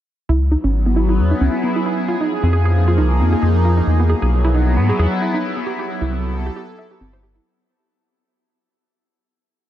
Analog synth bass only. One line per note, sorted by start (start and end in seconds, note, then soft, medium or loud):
0.29 0.56 C#2 medium
0.64 1.20 G#1 medium
1.19 1.33 E2 medium
1.41 1.49 C#2 loud
2.43 2.99 F2 medium
2.98 3.22 C2 medium
3.20 3.35 F2 medium
3.42 3.81 F2 medium
3.87 4.14 E2 medium
4.22 4.78 B1 medium
4.77 4.92 G#2 medium
4.99 5.07 E2 loud
6.01 6.50 C2 medium
7.01 7.40 G1 loud